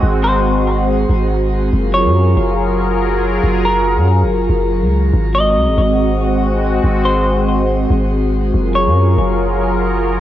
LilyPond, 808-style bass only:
\new Staff \with { instrumentName = "808-style bass" } { \clef bass \time 4/4 \key ges \lydian \tempo 4 = 141 aes,,2~ aes,,8 aes,,4. | ges,,8. ges,8. ges,,2~ ges,,8 | ges,,4~ ges,,16 ges,8~ ges,32 ges,,8~ ges,,32 ges,,8. des,8. | aes,,4 c,16 aes,,16 aes,,2~ aes,,8 |
aes,,2~ aes,,8 aes,,4. | ges,,8. ges,8. ges,,2~ ges,,8 | }